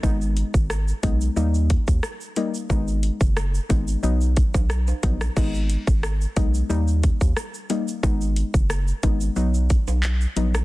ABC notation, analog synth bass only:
X:1
M:4/4
L:1/16
Q:1/4=90
K:G#m
V:1 name="Analog synth bass" clef=bass
G,,,3 G,,,3 B,,,2 D,,3 D,, z4 | G,,,3 F,,,3 G,,,2 B,,,3 B,,,3 A,,,2 | G,,,3 G,,,3 B,,,2 D,,3 D,, z4 | G,,,3 F,,,3 G,,,2 B,,,3 B,,,3 A,,,2 |]